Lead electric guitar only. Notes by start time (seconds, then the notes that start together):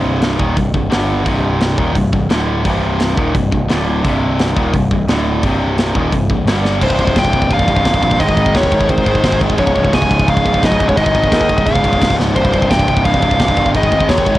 6.83 C5
7.19 G5
7.54 F5
8.20 D#5
8.56 C#5
8.91 C5
9.59 C#5
9.94 G#5
10.30 F5
10.64 D#5
10.88 C#5
10.97 D#5
11.66 F5
12.36 C5
12.70 G5
13.05 F5
13.77 D#5
14.10 C#5